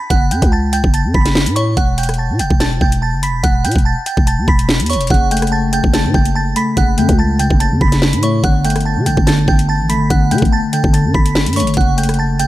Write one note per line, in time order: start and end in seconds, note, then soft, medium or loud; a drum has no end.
0.10 0.33 F#1 loud
0.10 0.27 F#5 loud
0.10 0.28 F#6 medium
0.10 kick loud
0.10 closed hi-hat medium
0.31 0.42 F#2 loud
0.31 0.48 G5 medium
0.31 0.49 G6 medium
0.31 closed hi-hat medium
0.42 0.82 C#2 loud
0.42 kick medium
0.42 closed hi-hat medium
0.52 0.69 A5 medium
0.52 0.70 A6 medium
0.73 0.90 G5 medium
0.73 0.90 G6 medium
0.73 closed hi-hat medium
0.84 1.06 F#1 loud
0.84 kick medium
0.94 1.11 A5 medium
0.94 1.11 A6 medium
0.94 closed hi-hat medium
1.05 1.14 F#2 loud
1.14 1.48 F#1 loud
1.14 1.54 B5 medium
1.14 1.54 B6 medium
1.14 kick medium
1.26 snare medium
1.26 closed hi-hat medium
1.35 snare loud
1.46 1.75 A2 loud
1.46 closed hi-hat medium
1.56 1.74 C#5 medium
1.56 1.73 C#6 medium
1.56 closed hi-hat medium
1.77 2.31 E1 loud
1.77 1.94 F#5 loud
1.77 1.95 F#6 medium
1.77 kick loud
1.77 closed hi-hat medium
1.98 2.15 G5 medium
1.98 2.15 G6 medium
1.98 closed hi-hat medium
2.03 closed hi-hat medium
2.09 cross-stick medium
2.09 closed hi-hat medium
2.14 closed hi-hat soft
2.18 2.35 A5 medium
2.18 2.36 A6 medium
2.30 2.41 B2 loud
2.39 2.50 E1 loud
2.39 2.57 G5 medium
2.39 2.57 G6 medium
2.39 closed hi-hat medium
2.50 2.80 E1 loud
2.50 kick medium
2.60 2.77 A5 medium
2.60 2.78 A6 medium
2.60 snare loud
2.60 closed hi-hat medium
2.81 3.15 E1 loud
2.81 2.98 G5 medium
2.81 2.99 G6 medium
2.81 kick medium
2.92 closed hi-hat medium
3.02 3.19 A5 medium
3.02 3.20 A6 medium
3.13 3.30 F#1 loud
3.23 3.40 B5 medium
3.23 3.40 B6 medium
3.23 closed hi-hat medium
3.28 3.43 E1 loud
3.43 3.66 E1 loud
3.43 3.61 F#5 loud
3.43 3.61 F#6 medium
3.43 kick loud
3.43 closed hi-hat medium
3.65 3.75 B2 loud
3.65 3.82 G5 medium
3.65 3.82 G6 medium
3.65 closed hi-hat medium
3.71 closed hi-hat medium
3.76 3.96 E1 loud
3.76 kick medium
3.76 closed hi-hat soft
3.85 4.02 A5 medium
3.85 4.03 A6 medium
4.06 4.23 G5 medium
4.06 4.24 G6 medium
4.06 closed hi-hat medium
4.17 4.39 E1 loud
4.17 kick medium
4.27 4.44 A5 medium
4.27 4.45 A6 medium
4.27 closed hi-hat medium
4.38 4.47 E2 medium
4.48 4.81 E1 loud
4.48 4.87 B5 medium
4.48 4.88 B6 medium
4.48 kick medium
4.59 closed hi-hat medium
4.69 snare loud
4.80 4.97 E2 loud
4.80 closed hi-hat medium
4.86 5.07 C#6 medium
4.86 closed hi-hat medium
4.86 open hi-hat medium
4.90 5.07 C#5 medium
4.90 closed hi-hat medium
4.95 5.10 E1 loud
5.01 closed hi-hat medium
5.07 5.81 F#1 loud
5.07 5.72 C#3 loud
5.07 5.28 F#5 loud
5.07 kick loud
5.07 closed hi-hat medium
5.11 5.28 F#6 medium
5.11 closed hi-hat soft
5.31 6.35 A3 medium
5.31 5.48 G5 medium
5.31 5.49 G6 medium
5.31 closed hi-hat medium
5.37 closed hi-hat medium
5.42 cross-stick medium
5.42 closed hi-hat medium
5.47 closed hi-hat soft
5.52 5.69 A5 medium
5.52 5.69 A6 medium
5.73 5.92 C#3 medium
5.73 5.90 G5 medium
5.73 5.90 G6 medium
5.73 closed hi-hat medium
5.84 6.06 F#1 loud
5.84 kick medium
5.94 6.76 C#3 medium
5.94 6.11 A5 medium
5.94 6.11 A6 medium
5.94 snare loud
5.94 closed hi-hat medium
6.05 6.14 A2 loud
6.14 6.54 F#1 loud
6.14 6.31 G5 medium
6.14 6.32 G6 medium
6.14 kick medium
6.25 closed hi-hat medium
6.35 6.52 A5 medium
6.35 6.53 A6 medium
6.56 6.97 A3 medium
6.56 6.73 B5 medium
6.56 6.74 B6 medium
6.56 closed hi-hat medium
6.77 6.99 F#1 loud
6.77 7.38 C#3 medium
6.77 6.94 F#5 loud
6.77 6.95 F#6 medium
6.77 kick loud
6.77 closed hi-hat medium
6.98 7.08 F#2 loud
6.98 8.02 A3 medium
6.98 7.15 G5 medium
6.98 7.15 G6 medium
6.98 closed hi-hat medium
7.09 7.49 C#2 loud
7.09 kick medium
7.09 closed hi-hat medium
7.19 7.36 A5 medium
7.19 7.36 A6 medium
7.39 7.59 C#3 medium
7.39 7.57 G5 medium
7.39 7.57 G6 medium
7.39 closed hi-hat medium
7.50 7.73 F#1 loud
7.50 kick loud
7.60 8.44 C#3 medium
7.60 7.77 A5 medium
7.60 7.78 A6 medium
7.60 closed hi-hat medium
7.71 7.80 F#2 loud
7.81 8.15 F#1 loud
7.81 8.20 B5 medium
7.81 8.21 B6 medium
7.81 kick medium
7.92 snare medium
7.92 closed hi-hat medium
8.02 snare loud
8.13 8.42 A2 loud
8.13 closed hi-hat medium
8.23 8.44 A3 medium
8.23 8.40 C#5 medium
8.23 8.40 C#6 medium
8.23 closed hi-hat medium
8.44 8.98 G1 loud
8.44 9.05 D3 loud
8.44 8.61 F#5 loud
8.44 8.61 F#6 medium
8.44 kick loud
8.44 closed hi-hat medium
8.65 9.69 A3 medium
8.65 8.82 G5 medium
8.65 8.82 G6 medium
8.65 closed hi-hat medium
8.70 closed hi-hat medium
8.76 cross-stick medium
8.76 closed hi-hat medium
8.81 closed hi-hat soft
8.85 9.02 A5 medium
8.85 9.03 A6 medium
8.96 9.08 D3 loud
9.06 9.17 G1 loud
9.06 9.26 D3 medium
9.06 9.23 G5 medium
9.06 9.24 G6 medium
9.06 closed hi-hat medium
9.17 9.47 G1 loud
9.17 kick medium
9.27 10.09 D3 medium
9.27 9.44 A5 medium
9.27 9.44 A6 medium
9.27 snare loud
9.27 closed hi-hat medium
9.48 9.81 G1 loud
9.48 9.65 G5 medium
9.48 9.65 G6 medium
9.48 kick medium
9.59 closed hi-hat medium
9.69 9.86 A5 medium
9.69 9.86 A6 medium
9.80 9.97 A1 loud
9.89 10.30 A3 medium
9.89 10.07 B5 medium
9.89 10.07 B6 medium
9.89 closed hi-hat medium
9.95 10.10 G1 loud
10.10 10.33 G1 loud
10.10 10.72 D3 medium
10.10 10.27 F#5 loud
10.10 10.28 F#6 medium
10.10 kick loud
10.10 closed hi-hat medium
10.31 10.42 D3 loud
10.31 11.35 A3 medium
10.31 10.48 G5 medium
10.31 10.49 G6 medium
10.31 closed hi-hat medium
10.38 10.62 G1 loud
10.38 closed hi-hat medium
10.42 kick medium
10.42 closed hi-hat soft
10.52 10.69 A5 medium
10.52 10.70 A6 medium
10.73 10.92 D3 medium
10.73 10.90 G5 medium
10.73 10.90 G6 medium
10.73 closed hi-hat medium
10.84 11.06 G1 loud
10.84 kick medium
10.93 11.77 D3 medium
10.93 11.11 A5 medium
10.93 11.11 A6 medium
10.93 closed hi-hat medium
11.05 11.14 G2 loud
11.14 11.48 G1 loud
11.14 11.54 B5 medium
11.14 11.54 B6 medium
11.14 kick medium
11.26 closed hi-hat medium
11.35 snare loud
11.46 11.63 G2 loud
11.46 closed hi-hat medium
11.53 11.77 A3 medium
11.53 11.73 C#6 medium
11.53 closed hi-hat medium
11.53 open hi-hat medium
11.57 11.74 C#5 medium
11.57 closed hi-hat medium
11.62 11.76 G1 loud
11.67 closed hi-hat medium
11.74 12.47 F#1 loud
11.74 12.38 C#3 medium
11.74 11.94 F#5 loud
11.74 kick loud
11.74 closed hi-hat medium
11.78 11.95 F#6 medium
11.78 closed hi-hat soft
11.97 12.47 A3 medium
11.97 12.15 G5 medium
11.97 12.15 G6 medium
11.97 closed hi-hat medium
12.03 closed hi-hat medium
12.09 cross-stick medium
12.09 closed hi-hat medium
12.14 closed hi-hat soft
12.19 12.36 A5 medium
12.19 12.36 A6 medium
12.39 12.47 C#3 medium
12.39 12.47 G5 medium
12.39 12.47 G6 medium
12.39 closed hi-hat medium